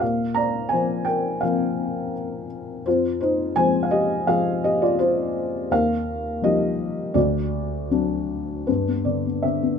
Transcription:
0.00 A#2 A#4 F5
0.34 D5 A#5
0.69 F3 C5 G#5
0.73 A#3 C4
1.05 A#4 G5
1.41 F3 A#3 C4 A#4 F5
2.86 F2 F4 C5
3.21 D#4 C5
3.56 F3 G#3 C4 C5 G#5
3.83 F5
3.91 G4 D#5
4.27 F3 G#3 C4 G#4 F5
4.64 G4 D#5
4.82 F4 D5
4.99 F4 C5
5.71 D#2 A#4 F5
6.42 F3 G3 D#4 G4 D#5
7.14 D2 F#4 D5
7.91 F#3 C4 D4
8.67 G2 D4 B4
8.87 B3
9.05 D3 D5
9.26 B3
9.43 D3 E5
9.62 B3

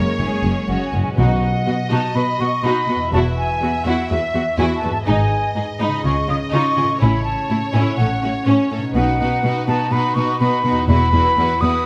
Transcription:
Already playing: G#3 A#3 C#4 A#4 C#5
0.20 F#1 F#2 G#3 C#4 G#4
0.44 F#1 F#2 G#3 C#4
0.68 F#1 F#2 G#3 C#4 F#4 F#5
0.85 G#5
0.93 F#1 F#2 G#3 C#4
1.00 B2 G#5
1.05 D#4
1.09 F#4
1.14 F#4 B4 D#5
1.18 B1 B2 D#4 F#5
1.67 B2 F#4
1.91 B2 D#4 F#4 A5
2.15 B2 F#4 B4 B5
2.40 B2 F#4 C#6
2.64 B2 D#4 F#4 B5
2.88 B2 F#4 B4
2.95 E2
3.00 E4
3.04 F#4
3.09 B4
3.13 E1 E2 E4 F#4 E5 A5
3.38 G#5
3.61 E2 F#4
3.85 E2 E4 F#4 F#5
4.10 E2 F#4 B4 E5
4.35 E2 F#4
4.58 E2 E4 F#4 G#5
4.76 A5
4.82 E2 F#4 B4
4.89 G#2 A5
4.94 D#4
4.98 G#4
5.02 B4
5.07 G#1 G#2 D#4 D#5 G#5
5.56 G#2 D#4 G#4
5.80 G#2 D#4 B5
5.87 C#3
5.91 D#4
5.96 F4
6.00 F4 C#5
6.05 C#2 C#3 G#4 C#6
6.28 C#3 F4 D#6
6.52 C#3 D#4 F4 C#6
6.77 C#3 F4 G#4
6.83 A2
6.88 C#4
6.92 E4
6.97 C#5
7.01 A1 A2 C#4 E4 C#5 B5
7.24 A5
7.50 A2 E4
7.73 A2 C#4 E4 G#5
7.81 A2
7.85 C#4
7.90 F#4
7.94 C#5 F#5
7.98 A1 A2 C#4 A4
8.22 A2 C#4 F#4
8.46 A2 C#4
8.71 A2 C#4 A4
8.77 B2
8.82 D#4
8.86 F#4
8.91 B1 B2 D#4 B4
8.96 F#4 F#5
9.19 B2 D#4 F#4 B4
9.42 B2 D#4 F#4 B4
9.67 B2 D#4 F#4 B4 A5
9.91 B2 D#4 F#4 B4 B5
10.15 B2 D#4 F#4 B4 C#6
10.40 B2 D#4 F#4 B4 B5
10.63 B2 D#4 F#4 B4
10.71 E2
10.76 E4
10.80 F#4
10.84 B4 B5
10.89 E1 E2 E4 F#4
11.12 E2 E4 F#4 B4
11.37 E2 E4 F#4 B4
11.61 E2 E4 F#4 B4 D#6

